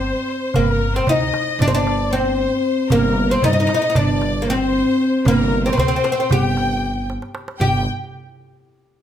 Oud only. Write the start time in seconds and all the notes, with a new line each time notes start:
Already playing: C4
0.56 A#3
0.96 C4
1.09 D#4
1.62 D4
1.68 C4
1.75 D4
2.13 C4
2.92 A#3
3.31 C4
3.44 D#4
3.53 D#4
3.60 D#4
3.67 D#4
3.74 D#4
3.82 D#4
3.90 D#4
3.96 D4
4.42 A#3
4.50 C4
5.28 A#3
5.66 C4
5.73 C4
5.79 C4
5.88 C4
5.96 C4
6.04 C4
6.12 C4
6.20 C4
6.32 G4
7.61 G4